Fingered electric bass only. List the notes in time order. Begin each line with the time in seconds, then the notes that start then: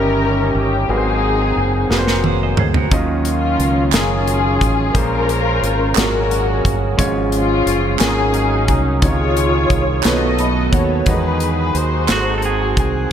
Already playing: G1
0.55 G1
0.89 G#1
1.56 F#1
1.90 F1
2.57 D2
2.91 D#2
3.59 C#2
3.93 F#1
4.61 A1
4.95 A#1
5.62 G#1
5.97 G#1
6.65 G1
6.99 G#1
7.66 F#1
8.00 G#1
8.68 C2
9.02 C#2
9.70 C2
10.05 B1
10.73 D#2
11.07 E2
11.75 D#2
12.09 G#1
12.77 C2